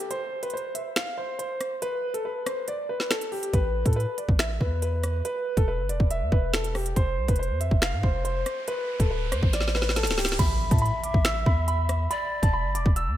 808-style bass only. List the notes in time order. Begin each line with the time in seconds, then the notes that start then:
3.54 A1
3.86 A2
4.29 A1
4.61 E2
5.57 E1
5.79 G1
5.89 E1
6.00 E1
6.21 E2
6.32 E1
6.96 F1
7.18 C2
7.28 F1
7.50 F2
7.71 F1
7.93 A2
8.03 F1
9.00 D1
9.32 F2
9.43 A1
10.07 C1
10.39 A1
10.71 A2
11.14 A1
11.46 E2
12.43 E1
12.64 G1
12.75 E1
12.86 E1
13.07 E2